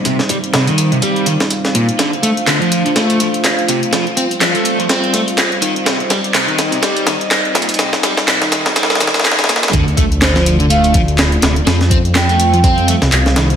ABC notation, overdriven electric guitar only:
X:1
M:4/4
L:1/16
Q:"Swing 16ths" 1/4=124
K:Cdor
V:1 name="Overdriven electric guitar" clef=bass
C, z G, z C, E,2 C, G,2 E, z3 B,, z | D, z A, z D, F,2 D, A,2 F, z3 C, z | F, z C z F, A,2 F, C2 A, z3 E, z | C, z G, z C, E,2 C, G,2 E, z3 B,, z |
C, z G, z C, E,2 C, G,2 E, z3 B,, z | D, z A, z D, F,2 D, A,2 F, z3 C, z | F, z C z F, A,2 F, C2 A, z3 E, z |]